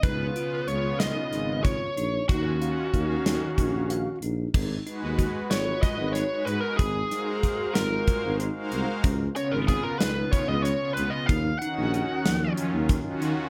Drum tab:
CC |-------|-------|x------|-------|
HH |xxxxxxx|xxxxxxx|-xxxxxx|xxxxxxx|
SD |---oo--|---o---|---ooo-|-o-o---|
BD |o----o-|o-o-o--|o-o-o--|o-o-o--|

CC |-------|-------|
HH |xxxxxxx|xxxxxxx|
SD |---o-o-|---o---|
BD |o-o-o--|o----o-|